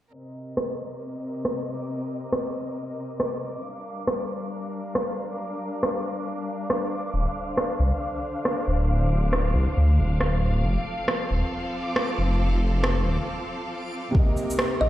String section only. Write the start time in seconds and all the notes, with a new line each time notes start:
0.13 C3 C4 A#4 D#5
3.64 G3 D4 A#4 F5
7.13 D3 C5
10.64 F3 C4 A4
14.15 C3 C4 D#4 A#4